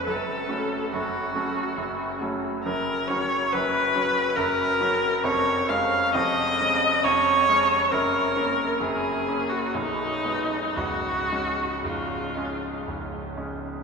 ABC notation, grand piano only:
X:1
M:3/4
L:1/8
Q:1/4=68
K:F#m
V:1 name="Grand piano" clef=bass
[F,,,F,,] [F,A,C] [F,,,F,,] [F,A,C] [F,,,F,,] [F,A,C] | [K:F#] [F,,,F,,] [F,C] [F,,,F,,] [F,C] [F,,,F,,] [F,C] | [E,,,E,,] [G,C] [E,,,E,,] [G,C] [E,,,E,,] [G,C] | [F,,,F,,] [A,C] [F,,,F,,] [A,C] [B,,,,B,,,] [G,B,D] |
[C,,,C,,] [G,C] [C,,,C,,] [G,C] [C,,,C,,] [G,C] |]